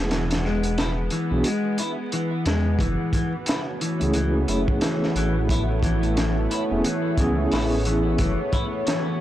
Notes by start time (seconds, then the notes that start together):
Already playing: E1 B3 G#4
0.11 E3, snare, closed hi-hat
0.31 snare, closed hi-hat
0.45 G#3, snare
0.63 closed hi-hat
0.78 E4, snare, closed hi-hat
1.10 E3, closed hi-hat
1.31 B1 B3 D4 F#4 G#4
1.44 G#3, closed hi-hat
1.78 E4, closed hi-hat
2.12 E3, closed hi-hat
2.46 E2 G#3, snare, closed hi-hat
2.79 F#1 E3 A3 B3 E4 F#4 C#5, kick, closed hi-hat
3.13 E3, kick, closed hi-hat
3.46 E4, snare, closed hi-hat
3.81 E3, closed hi-hat
4.00 C#2 A3 C#4 E4 G#4, closed hi-hat
4.13 C#2 E3, closed hi-hat
4.48 F#1 E4, closed hi-hat
4.68 kick
4.81 E3, snare, closed hi-hat
5.03 snare
5.15 A1 E3, closed hi-hat
5.49 E4 G#4 C#5, kick, closed hi-hat
5.83 E3, kick, closed hi-hat
6.03 closed hi-hat
6.17 E3, snare, closed hi-hat
6.51 E4, closed hi-hat
6.71 E1 B3 C#4 E4 G#4
6.84 E3, closed hi-hat
7.17 C#2 E3 B3 C#4 E4 G#4, kick, closed hi-hat
7.51 A1 E4, snare, open hi-hat
7.85 E3, closed hi-hat
8.18 F#1 E3 F#4, kick, closed hi-hat
8.52 E4, kick, closed hi-hat
8.87 E3, snare, closed hi-hat